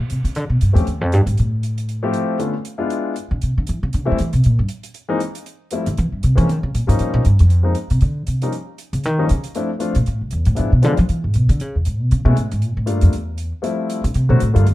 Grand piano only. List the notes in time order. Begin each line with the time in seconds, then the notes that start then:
0.73 F3 A3 C4 C#4 G4
2.03 F3 A3 C4 E4 G4
2.39 D3 A3 B3 C#4 F4
2.78 G#3 B3 D4 E4 F4
4.05 E3 G3 A3 C4 E4
5.09 E3 G#3 A#3 C4 D#4
5.72 F3 G3 A3 C4 E4
6.35 F3 G#3 A#3 C4 C#4
6.87 F3 G3 A#3 C#4 D#4
7.63 F3 G#3 A#3 C4 D#4
8.42 F3 G3 A#3 C#4 D#4
9.18 F3 G3 A#3 C#4 D#4
9.55 F3 A3 C4 D4 E4
9.79 F3 A3 C4 D4 F4
10.55 F3 G#3 B3 D4 E4
10.82 F3 G#3 B3 D4 F4
12.25 G#3 A3 B3 C#4 E4
12.86 G3 A3 A#3 D4 F4
13.62 F3 G3 A3 C4 E4
14.29 D3 F#3 A3 C4 F#4
14.54 D3 G3 A3 A#3 F4